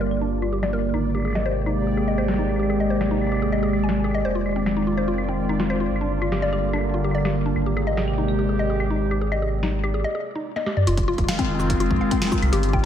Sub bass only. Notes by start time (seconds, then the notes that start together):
Already playing: G1
0.94 G#1
4.25 F1
5.91 G1
7.56 G#1
10.87 F1
11.18 F1
11.49 F1
11.91 A#1
12.42 C2
12.53 G1